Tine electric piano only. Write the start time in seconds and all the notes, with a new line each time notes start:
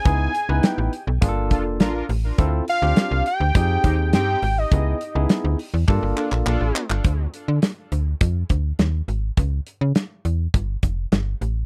0.05 B3 D#4 E4 G#4
0.49 B3 D#4 E4 B4
1.21 A#3 D4 F4 G#4
1.29 A4
2.38 C4 E4 F4 A4
2.82 C4 D4 F4 G4
3.55 C4 D#4 G4 G#4
4.71 B3 D#4 E4 G#4
5.15 B3 D#4 E4 G#4
5.88 A#3 D4 F4 A4